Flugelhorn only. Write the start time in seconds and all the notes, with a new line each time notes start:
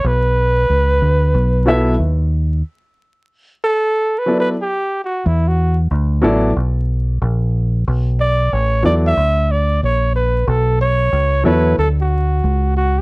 0.06 B4
3.64 A4
4.18 B4
4.40 B4
4.61 G4
5.04 F#4
5.26 E4
5.48 F#4
8.20 D5
8.53 C#5
8.85 D5
9.07 E5
9.51 D5
9.83 C#5
10.16 B4
10.48 A4
10.81 C#5
11.46 B4
11.79 A4
12.01 F#4
12.77 F#4
12.98 G4